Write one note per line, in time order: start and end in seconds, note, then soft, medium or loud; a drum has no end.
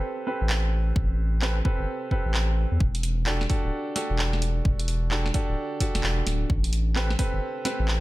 0.00 0.25 C4 medium
0.00 2.81 C4 medium
0.00 0.25 G4 medium
0.00 0.25 A4 medium
0.00 0.25 B4 loud
0.00 3.84 B4 medium
0.27 1.40 C4 medium
0.27 1.40 G4 medium
0.27 1.40 A4 medium
0.27 1.40 B4 medium
0.41 0.92 A1 medium
0.50 clap loud
0.96 1.62 A1 medium
0.96 kick loud
1.42 1.56 C4 medium
1.42 1.56 G4 medium
1.42 1.56 A4 medium
1.42 1.56 B4 loud
1.42 clap loud
1.65 2.09 C4 medium
1.65 2.09 G4 medium
1.65 2.09 A4 medium
1.65 2.09 B4 loud
1.65 kick loud
1.79 1.86 G1 medium
2.11 2.79 C4 medium
2.11 2.79 G4 medium
2.11 2.79 A4 medium
2.11 2.79 B4 medium
2.11 kick medium
2.26 2.66 A1 medium
2.34 clap loud
2.72 2.78 E2 medium
2.80 3.46 E1 medium
2.80 7.56 D4 medium
2.80 kick loud
2.95 open hi-hat medium
3.03 open hi-hat medium
3.26 3.41 D4 medium
3.26 3.41 F#4 medium
3.26 3.41 G4 medium
3.26 3.41 A4 medium
3.26 clap loud
3.41 snare medium
3.48 3.94 D4 medium
3.48 3.94 F#4 medium
3.48 3.94 G4 medium
3.48 7.51 A4 medium
3.48 3.94 A4 loud
3.48 kick medium
3.48 open hi-hat medium
3.64 3.71 D1 medium
3.96 5.09 D4 medium
3.96 5.09 F#4 medium
3.96 5.09 G4 medium
3.96 5.09 A4 medium
3.96 snare soft
3.96 open hi-hat loud
4.10 4.62 E1 medium
4.19 clap loud
4.33 snare soft
4.42 open hi-hat loud
4.65 5.31 E1 loud
4.65 kick loud
4.79 open hi-hat medium
4.88 open hi-hat medium
5.11 5.25 D4 medium
5.11 5.25 F#4 medium
5.11 5.25 G4 medium
5.11 5.25 A4 loud
5.11 clap loud
5.26 snare medium
5.34 5.78 D4 medium
5.34 5.78 F#4 medium
5.34 5.78 G4 medium
5.34 5.78 A4 loud
5.34 kick medium
5.34 open hi-hat medium
5.49 5.55 D1 medium
5.80 6.49 D4 medium
5.80 6.49 F#4 medium
5.80 6.49 G4 medium
5.80 6.49 A4 medium
5.80 kick medium
5.80 open hi-hat loud
5.95 6.01 E1 loud
5.95 snare medium
5.95 open hi-hat medium
6.03 6.22 E1 medium
6.03 clap loud
6.26 6.45 D1 loud
6.26 snare medium
6.26 open hi-hat loud
6.49 7.16 A1 medium
6.49 8.00 C4 loud
6.49 kick loud
6.64 open hi-hat medium
6.73 open hi-hat medium
6.96 7.10 C4 medium
6.96 7.10 G4 medium
6.96 7.10 A4 medium
6.96 7.10 B4 loud
6.96 clap loud
7.10 snare medium
7.19 7.63 C4 medium
7.19 7.63 G4 medium
7.19 7.63 A4 medium
7.19 7.63 B4 loud
7.19 kick medium
7.19 open hi-hat loud
7.33 7.40 G1 medium
7.65 8.00 C4 medium
7.65 8.00 G4 medium
7.65 8.00 A4 medium
7.65 8.00 B4 medium
7.65 snare medium
7.65 open hi-hat loud
7.79 8.00 A1 medium
7.88 clap loud